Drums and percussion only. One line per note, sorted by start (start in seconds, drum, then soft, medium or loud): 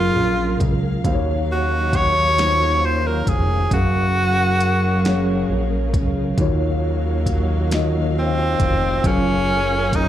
0.60 kick loud
0.60 closed hi-hat medium
1.04 kick loud
1.04 closed hi-hat medium
1.93 kick medium
1.93 closed hi-hat medium
2.38 snare loud
2.38 closed hi-hat medium
3.27 kick loud
3.27 closed hi-hat medium
3.71 kick loud
3.71 closed hi-hat medium
4.60 closed hi-hat medium
5.05 snare loud
5.05 closed hi-hat medium
5.94 kick loud
5.94 closed hi-hat medium
6.38 kick loud
6.38 closed hi-hat medium
7.26 kick medium
7.26 closed hi-hat medium
7.71 snare loud
7.71 closed hi-hat medium
8.60 kick loud
8.60 closed hi-hat medium
9.04 kick loud
9.04 closed hi-hat medium
9.93 kick medium
9.93 closed hi-hat medium